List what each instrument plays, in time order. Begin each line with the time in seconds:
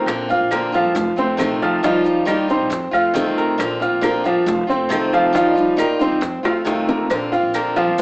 Already playing: grand piano A#4 A#5
0.06 upright bass A#1, steel-string acoustic guitar D3 A#3 C4 F4, high bongo, claves, maracas
0.29 steel-string acoustic guitar A#3 C4 F4, grand piano F4 F5 F6, high bongo, maracas
0.40 upright bass A#1
0.51 steel-string acoustic guitar D3 A#3 C4 F4, grand piano A#3 A#4 A#5, high bongo, claves, maracas
0.72 grand piano F3 F4 F5, steel-string acoustic guitar A#3 C4 F4, maracas
0.84 upright bass G1
0.95 upright bass F1, muted steel-string acoustic guitar stroke, high bongo, maracas
1.16 upright bass F1, steel-string acoustic guitar A3 C4 F4, grand piano C4 C5 C6, high bongo, maracas
1.37 upright bass A#1, steel-string acoustic guitar C3 D#3 A3 C4 F4, high bongo, low bongo, claves, maracas
1.62 grand piano F3 F4 F5, high bongo, maracas
1.83 upright bass D#2, steel-string acoustic guitar D#3 G3 D#4 F4, grand piano F3 F4 F5, high bongo, maracas
2.04 steel-string acoustic guitar G3 D#4 F4, high bongo, maracas
2.17 upright bass D#2
2.25 steel-string acoustic guitar D#3 G3 D#4 F4, grand piano A#3 A#4 A#5, high bongo, claves, maracas
2.48 steel-string acoustic guitar G3 D#4 F4, grand piano C4 C5 C6, maracas
2.59 upright bass A#1
2.70 upright bass F2, muted steel-string acoustic guitar stroke, high bongo, maracas
2.91 upright bass F2, steel-string acoustic guitar A3 C4 F4, grand piano F4 F5 F6, high bongo, claves, maracas
3.13 upright bass C2, steel-string acoustic guitar C3 D#3 A3 C4 F4, high bongo, low bongo, maracas
3.38 grand piano A#4 A#5, high bongo, maracas
3.58 upright bass A#1, steel-string acoustic guitar D3 A#3 C4 F4, high bongo, claves, maracas
3.80 steel-string acoustic guitar A#3 C4 F4, grand piano F4 F5 F6, high bongo, maracas
3.92 upright bass A#1
4.01 steel-string acoustic guitar D3 A#3 C4 F4, grand piano A#3 A#4 A#5, high bongo, claves, maracas
4.24 grand piano F3 F4 F5, steel-string acoustic guitar A#3 C4 F4, maracas
4.36 upright bass G1
4.46 upright bass F1, muted steel-string acoustic guitar stroke, high bongo, maracas
4.67 upright bass F1, steel-string acoustic guitar A3 C4 F4, grand piano C4 C5 C6, high bongo, maracas
4.89 upright bass C2, steel-string acoustic guitar C3 D#3 A3 C4 F4, high bongo, low bongo, claves, maracas
5.13 grand piano F3 F4 F5, high bongo, maracas
5.33 upright bass D#2, steel-string acoustic guitar D#3 G3 D#4 F4, grand piano F3 F4 F5, high bongo, maracas
5.55 steel-string acoustic guitar G3 D#4 F4, high bongo, maracas
5.68 upright bass D#2
5.77 steel-string acoustic guitar D#3 G3 D#4 F4, grand piano A#3 A#4 A#5, high bongo, claves, maracas
5.99 steel-string acoustic guitar G3 D#4 F4, grand piano C4 C5 C6, maracas
6.12 upright bass D#2
6.21 upright bass F2, muted steel-string acoustic guitar stroke, high bongo, maracas
6.43 upright bass F2, steel-string acoustic guitar A3 C4 F4, grand piano F4 F5 F6, high bongo, claves, maracas
6.65 upright bass C2, steel-string acoustic guitar C3 D#3 A3 C4 F4, high bongo, maracas
6.88 grand piano A#3 A#4 A#5, low bongo, maracas
7.10 upright bass A#1, steel-string acoustic guitar D3 A#3 C4 F4, cowbell, claves, maracas
7.32 steel-string acoustic guitar A#3 C4 F4, grand piano F4 F5 F6, maracas
7.43 upright bass A#1
7.54 steel-string acoustic guitar D3 A#3 C4 F4, grand piano A#3 A#4 A#5, cowbell, claves, maracas
7.76 grand piano F3 F4 F5, steel-string acoustic guitar A#3 C4 F4, cowbell, maracas
7.87 upright bass G1
7.98 upright bass F1, muted steel-string acoustic guitar stroke, maracas